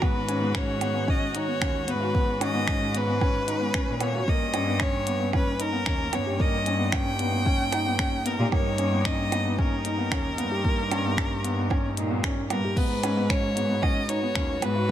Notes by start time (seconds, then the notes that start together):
Already playing: D#3 G#3 C#4 F#4
0.02 G#2 B3 B4, kick, percussion blips
0.28 C#4, closed hi-hat
0.41 B3
0.55 C#4 C#5, finger snap, kick
0.81 B3, closed hi-hat, percussion blips
0.94 B3
1.07 C#4 D#5, kick
1.35 D#4 C#5, closed hi-hat
1.48 B3
1.61 D#2 C#4, finger snap, kick, percussion blips
1.87 G#2 B3 B4, closed hi-hat
2.00 F#4
2.14 B3, kick
2.41 C#4 D#5, closed hi-hat, percussion blips
2.54 B3
2.68 C#4, finger snap, kick
2.94 B3 B4, closed hi-hat
3.07 B3
3.21 C#4, kick, percussion blips
3.47 D#4, closed hi-hat
3.60 B3
3.74 C#4, finger snap, kick
3.88 A#2
4.01 B3 C#5, closed hi-hat, percussion blips
4.14 F#4
4.28 G2 A#3 D#5, kick
4.54 C#4, closed hi-hat, percussion blips
4.67 B3
4.80 C#4 C#5, finger snap, kick
5.07 B3, closed hi-hat
5.19 B3
5.33 C#4 B4, kick, percussion blips
5.38 D#4
5.60 D#4 A#4, closed hi-hat
5.73 B3 G4
5.86 D#2 C#4, finger snap, kick
6.13 G2 B3 C#5, closed hi-hat, percussion blips
6.26 G4
6.39 A#3 D#5, kick
6.66 C#4, closed hi-hat
6.79 B3
6.92 C#4 G5, finger snap, kick, percussion blips
7.19 B3, closed hi-hat
7.32 B3
7.46 C#4, kick
7.72 D#4, closed hi-hat, percussion blips
7.86 B3
7.99 C#4, finger snap, kick
8.25 B3 A#4, closed hi-hat
8.39 A#2 G4
8.52 G2 A#3 C#5, kick, percussion blips
8.78 C#4, closed hi-hat
8.92 B3
9.05 C#4 D#5, finger snap, kick
9.32 B3, closed hi-hat, percussion blips
9.45 B3
9.58 C#4 A#4, kick
9.85 D#4, closed hi-hat
9.98 B3
10.11 D#2 C#4, finger snap, kick, percussion blips
10.38 G2 B3, closed hi-hat
10.51 G4
10.64 A#3, kick
10.91 C#4, closed hi-hat, percussion blips
11.05 B3
11.17 C#4, finger snap, kick
11.44 B3, closed hi-hat
11.58 B3
11.70 C#4, kick, percussion blips
11.97 A#2 D#4, closed hi-hat
12.11 B3
12.23 C#4, finger snap, kick
12.50 G2 B3 A#4, closed hi-hat, percussion blips
12.64 G4
12.76 G#2 G#3 B3 B4, kick, crash
13.03 C#4, closed hi-hat, percussion blips
13.14 B3 F#4
13.25 C#4
13.30 C#4 C#5, finger snap, kick
13.56 B3, closed hi-hat
13.68 B3 B4
13.82 C#4 D#5, kick, percussion blips
14.09 D#4 C#5, closed hi-hat
14.22 B3
14.35 D#2 C#4, finger snap, kick
14.62 G#2 B3 B4, closed hi-hat, percussion blips
14.76 F#4